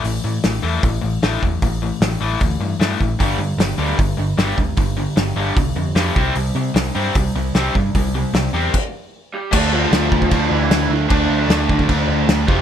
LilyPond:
<<
  \new Staff \with { instrumentName = "Lead electric guitar" } { \time 4/4 \key d \minor \tempo 4 = 152 r1 | r1 | r1 | r1 |
r1 | r2. r8 <g g'>8 | <a a'>8 <f f'>4. <f f'>8 <e e'>4 r8 | <d' d''>2 r4. <g g'>8 | }
  \new Staff \with { instrumentName = "Overdriven electric guitar" } { \time 4/4 \key d \minor r1 | r1 | r1 | r1 |
r1 | r1 | <d a d' f'>2 <d a d' f'>2 | <d a d' f'>2 <d a d' f'>4. <f a c' f'>8 | }
  \new Staff \with { instrumentName = "Distorted electric guitar" } { \clef bass \time 4/4 \key d \minor r1 | r1 | <g, d g>8 <g, d>8 <g, d>8 <g, d g>8 <g, d>8 <g, d>8 <g, d g>8 <g, d>8 | <g, d>8 <g, d>8 <g, d>8 <g, d g>8 <g, d>8 <g, d>8 <g, d g>8 <c g c'>8 |
<c g>8 <c g>8 <c g>8 <c g c'>8 <c g>8 <c g>8 <c g c'>8 <c g>8 | <c g>8 <c g>8 <c g>8 <c g c'>8 r2 | <d a d'>2.~ <d a d'>8 <d a d'>8 | <d a d'>2.~ <d a d'>8 <f, c f>8 | }
  \new Staff \with { instrumentName = "Overdriven electric guitar" } { \clef bass \time 4/4 \key d \minor <a, e>8 <a, e>8 <a, e>8 <a, e a>8 <a, e>8 <a, e>8 <a, e a>8 <a, e>8 | <a, e>8 <a, e>8 <a, e>8 <a, e a>8 <a, e>8 <a, e>8 <a, e a>8 <a, e>8 | <g, d g>8 <g, d>8 <g, d>8 <g, d g>8 <g, d>8 <g, d>8 <g, d g>8 <g, d>8 | <g, d>8 <g, d>8 <g, d>8 <g, d g>8 <g, d>8 <g, d>8 <g, d g>8 <c g c'>8 |
<c g>8 <c g>8 <c g>8 <c g c'>8 <c g>8 <c g>8 <c g c'>8 <c g>8 | <c g>8 <c g>8 <c g>8 <c g c'>8 r2 | <d a d'>1 | <d a d'>2.~ <d a d'>8 <f, c f>8 | }
  \new Staff \with { instrumentName = "Picked electric bass" } { \clef bass \time 4/4 \key d \minor a,,8 a,8 a,,8 e,8 a,,8 a,,8 a,,8 e,8 | a,,4 a,,8 a,,8 d,8 g,8 g,8 a,,8 | g,,8 g,8 g,,8 d,8 g,,8 g,,8 g,,8 d,8 | g,,4 g,,8 g,,8 c,8 f,8 f,8 c,8 |
c,8 c8 c,8 g,8 c,8 c,8 c,8 g,8 | c,4 c,8 e,8 r2 | d,4 d,8 d,8 d,8 d,8 d,8 d,8 | d,8 d,8 d,8 d,8 d,8 d,8 d,8 f,,8 | }
  \new DrumStaff \with { instrumentName = "Drums" } \drummode { \time 4/4 hho4 <hho sn>4 <hho bd>4 <hho sn>8 bd8 | <hho bd>4 <hho sn>4 <hho bd>4 <hho sn>8 bd8 | <hho bd>4 <hho sn>4 <hho bd>4 <hho sn>8 bd8 | <hho bd>4 <hho sn>4 <hho bd>4 <hho sn>8 bd8 |
hho4 <hho sn>4 <hho bd>4 <hho sn>8 bd8 | <hho bd>4 <hho sn>4 <cymc bd>4 r4 | <cymc bd>4 <cymc sn>8 bd16 bd16 <cymc bd>4 <cymc sn>4 | <cymc bd>4 <cymc sn>8 bd16 bd16 <cymc bd>4 <cymc sn>8 bd8 | }
>>